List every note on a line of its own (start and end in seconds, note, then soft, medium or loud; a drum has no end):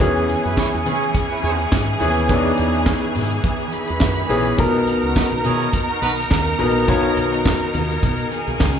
0.00 0.34 E2 loud
0.00 0.83 E3 medium
0.00 4.55 E3 medium
0.00 0.83 B3 medium
0.00 2.27 C#4 medium
0.00 0.84 C#4 medium
0.00 4.55 G#4 medium
0.00 3.69 G#4 medium
0.00 0.84 G#4 loud
0.00 3.69 G#5 loud
0.00 kick loud
0.00 closed hi-hat medium
0.00 muted conga soft
0.00 low conga medium
0.17 closed hi-hat soft
0.28 closed hi-hat medium
0.28 high conga medium
0.45 0.55 F#2 medium
0.45 0.55 E4 medium
0.45 0.55 G#4 medium
0.45 0.55 B4 medium
0.45 closed hi-hat soft
0.57 0.67 E4 medium
0.57 0.67 G#4 medium
0.57 0.67 C#5 medium
0.57 kick loud
0.57 snare loud
0.57 clap medium
0.57 muted conga soft
0.57 high conga medium
0.74 0.83 E2 medium
0.74 closed hi-hat soft
0.86 1.08 E3 loud
0.86 1.09 C#4 loud
0.86 1.09 E4 medium
0.86 1.09 G#4 loud
0.86 closed hi-hat medium
0.86 high conga medium
0.86 low conga medium
1.03 closed hi-hat medium
1.14 kick loud
1.14 closed hi-hat medium
1.14 muted conga soft
1.30 1.41 E4 medium
1.30 1.41 G#4 medium
1.30 1.41 B4 medium
1.30 closed hi-hat soft
1.43 1.65 E2 loud
1.43 1.56 E4 medium
1.43 1.56 G#4 medium
1.43 1.56 C#5 medium
1.43 closed hi-hat medium
1.43 high conga medium
1.59 closed hi-hat soft
1.71 1.94 G#2 medium
1.71 kick loud
1.71 snare loud
1.71 clap medium
1.71 high conga medium
2.00 2.29 D#2 medium
2.00 2.22 E3 loud
2.00 2.22 B3 medium
2.00 2.23 C#4 medium
2.00 2.23 G#4 loud
2.00 open hi-hat medium
2.00 muted conga soft
2.00 high conga medium
2.00 low conga medium
2.17 closed hi-hat soft
2.29 2.51 E2 loud
2.29 3.13 E3 medium
2.29 8.79 B3 medium
2.29 3.13 B3 medium
2.29 3.14 C#4 medium
2.29 2.38 D4 medium
2.29 kick loud
2.29 closed hi-hat medium
2.29 muted conga soft
2.29 low conga medium
2.37 3.17 D#4 loud
2.46 closed hi-hat soft
2.57 2.92 E2 loud
2.57 closed hi-hat medium
2.57 high conga medium
2.74 closed hi-hat soft
2.86 kick loud
2.86 snare loud
2.86 clap medium
2.86 high conga medium
3.15 3.38 G#2 medium
3.15 open hi-hat medium
3.15 high conga medium
3.15 low conga medium
3.32 closed hi-hat soft
3.43 3.66 E3 loud
3.43 kick loud
3.43 closed hi-hat medium
3.43 muted conga soft
3.59 closed hi-hat soft
3.72 4.57 B4 medium
3.72 4.57 B5 medium
3.72 closed hi-hat medium
3.72 high conga medium
3.87 4.02 E2 medium
3.87 closed hi-hat soft
4.00 4.23 F#2 loud
4.00 kick loud
4.00 snare loud
4.00 clap medium
4.00 muted conga soft
4.00 high conga medium
4.29 4.52 A#1 loud
4.29 4.51 E3 medium
4.29 4.52 B3 medium
4.29 4.52 C#4 medium
4.29 4.52 G#4 loud
4.29 open hi-hat medium
4.29 high conga medium
4.29 low conga medium
4.46 closed hi-hat medium
4.58 4.92 B1 loud
4.58 5.42 B2 medium
4.58 5.42 B3 medium
4.58 5.42 D#4 medium
4.58 8.79 D#4 medium
4.58 8.28 A#4 medium
4.58 5.43 A#4 loud
4.58 8.79 A#4 medium
4.58 8.28 A#5 medium
4.58 kick loud
4.58 closed hi-hat medium
4.58 low conga loud
4.75 closed hi-hat soft
4.87 closed hi-hat medium
4.87 muted conga soft
4.87 high conga medium
5.03 5.13 C#2 medium
5.03 5.14 D#4 medium
5.03 5.13 F#4 medium
5.03 5.14 A#4 medium
5.03 closed hi-hat soft
5.16 5.26 D#4 medium
5.16 5.26 F#4 medium
5.16 5.26 B4 medium
5.16 kick loud
5.16 snare loud
5.16 clap loud
5.16 muted conga soft
5.16 high conga medium
5.32 5.42 B1 loud
5.44 5.66 B2 medium
5.44 5.68 C#4 loud
5.44 5.68 E4 loud
5.44 5.68 G#4 loud
5.44 closed hi-hat medium
5.44 muted conga soft
5.44 high conga medium
5.44 low conga medium
5.62 closed hi-hat soft
5.73 kick loud
5.73 closed hi-hat medium
5.73 muted conga soft
5.90 6.00 D#4 medium
5.90 6.00 F#4 medium
5.90 6.00 A#4 medium
6.02 6.24 B1 loud
6.02 6.12 D#4 medium
6.02 6.12 F#4 medium
6.02 6.12 B4 medium
6.02 closed hi-hat medium
6.02 high conga medium
6.17 closed hi-hat soft
6.31 6.53 D#2 loud
6.31 kick loud
6.31 snare loud
6.31 clap loud
6.31 muted conga soft
6.31 high conga medium
6.48 closed hi-hat soft
6.58 6.88 A#1 medium
6.58 6.81 B2 medium
6.58 6.81 B3 medium
6.58 6.81 D#4 medium
6.58 6.82 A#4 loud
6.58 open hi-hat medium
6.58 muted conga soft
6.58 high conga medium
6.58 low conga medium
6.76 closed hi-hat medium
6.88 7.10 B1 loud
6.88 7.72 B2 loud
6.88 7.72 B3 medium
6.88 7.72 D#4 medium
6.88 7.72 C#5 loud
6.88 kick loud
6.88 closed hi-hat medium
6.88 muted conga soft
6.88 low conga medium
7.05 closed hi-hat soft
7.16 7.51 B1 loud
7.16 closed hi-hat medium
7.16 muted conga soft
7.16 high conga medium
7.33 closed hi-hat soft
7.46 kick loud
7.46 snare loud
7.46 clap loud
7.46 high conga medium
7.62 closed hi-hat soft
7.74 7.96 D#2 loud
7.74 closed hi-hat medium
7.74 muted conga soft
7.74 high conga medium
7.74 low conga medium
7.91 closed hi-hat soft
8.03 8.25 B2 loud
8.03 kick loud
8.03 closed hi-hat medium
8.03 muted conga soft
8.18 closed hi-hat soft
8.31 8.79 G#4 medium
8.31 8.79 G#5 medium
8.31 closed hi-hat medium
8.31 muted conga soft
8.31 high conga medium
8.47 8.57 B1 loud
8.47 closed hi-hat soft
8.60 8.79 C#2 loud
8.60 kick loud
8.60 snare loud
8.60 clap loud
8.60 high conga medium